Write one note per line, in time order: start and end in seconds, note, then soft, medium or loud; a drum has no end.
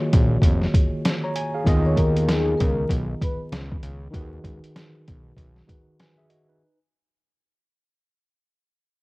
0.00 1.61 D#3 medium
0.00 1.62 A#3 medium
0.00 1.62 F4 medium
0.00 1.01 G#4 medium
0.00 1.05 C#5 medium
0.13 0.38 A#1 medium
0.13 kick medium
0.13 closed hi-hat medium
0.42 0.67 F1 loud
0.42 kick medium
0.42 closed hi-hat medium
0.62 snare soft
0.74 kick loud
0.74 closed hi-hat medium
1.05 snare loud
1.05 closed hi-hat medium
1.24 1.35 C#5 medium
1.24 1.35 A#5 medium
1.36 1.53 G#5 medium
1.36 closed hi-hat medium
1.54 1.66 G#4 medium
1.54 1.84 F5 medium
1.64 2.55 D#2 loud
1.64 4.09 D#3 medium
1.64 4.09 B3 medium
1.64 4.10 F4 medium
1.64 4.10 G#4 medium
1.64 kick loud
1.64 closed hi-hat loud
1.68 4.11 D#5 medium
1.85 1.96 C#5 medium
1.85 1.96 C#6 medium
1.96 2.24 A#4 medium
1.96 2.25 A#5 medium
1.96 kick medium
1.96 closed hi-hat medium
2.17 closed hi-hat medium
2.29 2.57 G#4 medium
2.29 2.57 G#5 medium
2.29 snare loud
2.29 closed hi-hat medium
2.58 2.85 C#2 medium
2.58 2.86 A#4 medium
2.58 2.87 A#5 medium
2.58 kick medium
2.58 closed hi-hat medium
2.89 3.15 B1 loud
2.89 kick medium
2.89 closed hi-hat medium
3.21 3.39 B4 medium
3.21 3.39 B5 medium
3.21 kick loud
3.21 closed hi-hat medium
3.52 3.77 C#2 medium
3.52 snare loud
3.52 closed hi-hat medium
3.72 kick medium
3.83 4.08 C#2 medium
3.83 closed hi-hat medium
4.11 4.39 D#2 loud
4.11 5.64 D#3 medium
4.11 5.64 D#4 medium
4.11 5.65 F#4 medium
4.11 4.22 G4 medium
4.11 kick loud
4.11 closed hi-hat medium
4.15 5.66 B4 medium
4.20 5.67 G#4 medium
4.44 4.60 C#2 medium
4.44 kick medium
4.44 closed hi-hat medium
4.64 closed hi-hat medium
4.76 snare loud
4.76 closed hi-hat medium
5.08 5.33 B1 medium
5.08 kick loud
5.08 closed hi-hat medium
5.37 5.62 B1 loud
5.37 kick medium
5.37 closed hi-hat medium
5.56 snare soft
5.67 6.60 D#3 medium
5.67 5.99 D#4 medium
5.67 5.99 F#4 soft
5.67 5.99 G#4 soft
5.67 5.99 B4 medium
5.67 kick loud
5.67 closed hi-hat medium
6.00 6.18 B4 medium
6.00 6.17 G#5 medium
6.00 snare loud
6.00 closed hi-hat medium
6.18 6.30 G#4 medium
6.18 6.29 E5 medium
6.29 6.48 F#4 medium
6.29 6.48 D#5 medium
6.29 closed hi-hat medium
6.49 6.79 D#4 medium
6.49 6.78 B4 medium